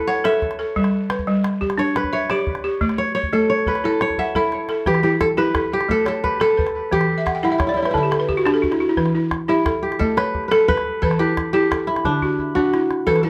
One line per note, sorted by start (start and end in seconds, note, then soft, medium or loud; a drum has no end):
0.00 1.23 A4 medium
0.00 0.97 B4 medium
0.07 1.22 C#5 medium
0.07 0.59 F#5 medium
0.24 0.58 A4 medium
0.24 1.28 E5 loud
0.24 calabash click medium
0.33 calabash click soft
0.42 calabash thump medium
0.42 calabash click soft
0.51 calabash click soft
0.59 0.93 A4 medium
0.76 1.10 G3 medium
0.76 calabash thump medium
0.76 calabash click soft
0.84 calabash click soft
1.10 1.62 B4 medium
1.10 calabash click medium
1.19 calabash thump soft
1.19 calabash click soft
1.27 1.61 G3 medium
1.44 calabash click medium
1.53 calabash click soft
1.61 2.13 G4 medium
1.61 calabash thump medium
1.70 calabash click soft
1.78 2.12 D4 medium
1.78 2.13 C#5 medium
1.78 calabash click soft
1.96 3.20 B4 medium
1.96 calabash click medium
2.04 calabash thump soft
2.04 calabash click soft
2.13 2.36 C#5 medium
2.13 2.64 E5 medium
2.30 2.63 G4 medium
2.30 3.04 D5 medium
2.30 calabash click medium
2.39 calabash click soft
2.47 calabash thump medium
2.55 calabash click soft
2.64 2.98 G4 medium
2.81 3.15 A3 medium
2.81 calabash thump medium
2.81 calabash click soft
2.89 calabash click soft
2.98 3.14 C#5 medium
3.15 3.49 C#5 medium
3.15 3.67 C#5 medium
3.23 calabash thump soft
3.33 3.67 A3 medium
3.33 3.85 A4 medium
3.50 4.01 C#5 medium
3.59 calabash click soft
3.66 4.18 A4 medium
3.66 4.91 B4 medium
3.66 calabash thump soft
3.75 calabash click soft
3.84 4.18 E4 medium
3.84 5.17 A4 medium
3.84 calabash click soft
3.93 calabash click soft
4.01 5.16 C#5 medium
4.01 calabash click medium
4.10 calabash thump soft
4.10 calabash click soft
4.18 5.22 E5 medium
4.18 4.70 F#5 medium
4.18 calabash thump soft
4.35 5.92 E4 medium
4.35 4.68 A4 medium
4.35 calabash thump soft
4.52 calabash click soft
4.69 5.04 A4 medium
4.69 calabash click medium
4.86 5.21 E3 medium
4.86 5.03 G4 loud
4.86 5.38 B4 medium
4.86 calabash thump medium
4.95 calabash click soft
5.03 5.36 E4 medium
5.03 5.09 G4 medium
5.21 5.27 A4 loud
5.21 calabash thump medium
5.21 calabash click medium
5.37 5.72 E4 medium
5.37 5.89 G4 medium
5.37 6.23 B4 medium
5.54 6.06 A4 medium
5.54 calabash thump medium
5.54 calabash click medium
5.73 6.92 G4 medium
5.81 calabash click soft
5.89 6.23 A3 medium
5.89 6.07 A4 loud
5.89 calabash thump medium
5.89 calabash click soft
6.06 6.41 A4 medium
6.06 6.57 C#5 medium
6.06 calabash click medium
6.15 calabash click soft
6.24 7.47 B4 medium
6.24 calabash thump medium
6.33 calabash click soft
6.40 6.74 A4 medium
6.40 7.73 A4 medium
6.40 calabash click medium
6.51 calabash click soft
6.57 7.09 B4 medium
6.57 calabash thump medium
6.67 calabash click soft
6.92 7.26 E3 medium
6.92 8.34 G4 loud
6.92 calabash thump medium
7.01 calabash click soft
7.18 7.34 E5 medium
7.26 7.42 F#5 medium
7.26 calabash thump medium
7.26 calabash click medium
7.35 7.51 G5 medium
7.43 7.77 E4 medium
7.43 7.51 E4 medium
7.43 7.59 F#5 medium
7.51 7.58 E4 soft
7.51 7.68 E5 medium
7.58 7.67 E4 medium
7.58 7.76 C#5 medium
7.58 calabash thump medium
7.58 calabash click medium
7.67 7.74 E4 medium
7.67 7.85 D5 medium
7.74 7.82 E4 medium
7.74 7.93 C#5 medium
7.82 7.90 E4 medium
7.82 8.02 B4 medium
7.82 calabash click medium
7.91 8.28 D3 medium
7.91 7.97 E4 medium
7.91 8.10 A4 medium
7.91 calabash thump medium
7.91 calabash click soft
7.97 9.49 E4 medium
8.03 8.19 G4 medium
8.11 8.27 A4 medium
8.11 calabash click medium
8.20 8.36 B4 medium
8.29 8.44 G4 medium
8.29 calabash thump medium
8.37 8.53 F#4 medium
8.37 calabash click soft
8.45 8.80 D4 medium
8.45 8.62 G4 medium
8.45 calabash click medium
8.54 8.70 A4 medium
8.54 calabash click soft
8.62 8.79 F#4 medium
8.62 calabash thump medium
8.71 8.87 E4 medium
8.71 calabash click soft
8.80 8.96 F#4 medium
8.89 9.05 E4 medium
8.97 9.32 E3 medium
8.97 9.49 B4 medium
8.97 calabash thump medium
9.06 calabash click soft
9.15 9.47 E4 medium
9.31 calabash thump medium
9.31 calabash click medium
9.48 9.83 E4 medium
9.48 11.06 E4 medium
9.48 10.00 G4 medium
9.66 10.17 A4 medium
9.66 calabash thump medium
9.66 calabash click medium
9.83 11.19 G4 medium
9.92 calabash click soft
9.99 10.34 A3 medium
9.99 10.51 A4 medium
9.99 calabash thump medium
9.99 calabash click soft
10.17 10.48 B4 medium
10.17 10.69 C#5 medium
10.17 calabash click medium
10.26 calabash click soft
10.35 calabash thump medium
10.44 calabash click soft
10.48 11.01 A4 medium
10.48 10.86 A4 medium
10.48 10.68 B4 medium
10.48 calabash click medium
10.60 calabash click soft
10.68 11.91 B4 loud
10.68 11.02 B4 medium
10.68 calabash thump medium
10.77 calabash click soft
11.02 11.37 E3 medium
11.02 12.34 A4 medium
11.02 11.54 B4 medium
11.02 calabash thump medium
11.11 calabash click medium
11.19 11.53 E4 medium
11.19 11.53 G4 medium
11.37 calabash thump medium
11.37 calabash click medium
11.53 11.88 E4 medium
11.53 12.61 G4 medium
11.53 12.05 G4 medium
11.63 calabash click soft
11.71 12.22 A4 medium
11.71 calabash thump medium
11.71 calabash click medium
11.87 13.30 E4 medium
11.87 calabash click soft
11.96 calabash click medium
12.05 12.40 D3 medium
12.05 13.30 D4 medium
12.05 calabash thump medium
12.05 calabash click soft
12.22 12.74 F#4 medium
12.22 calabash thump soft
12.39 calabash thump soft
12.55 12.91 D4 medium
12.55 13.30 F#4 medium
12.55 calabash thump soft
12.73 13.23 E4 medium
12.73 calabash click soft
12.91 calabash click soft
13.07 13.30 E3 medium
13.07 13.23 A4 loud
13.07 13.30 B4 medium
13.07 calabash thump medium
13.16 calabash click soft
13.23 13.30 E4 medium
13.23 13.30 A4 medium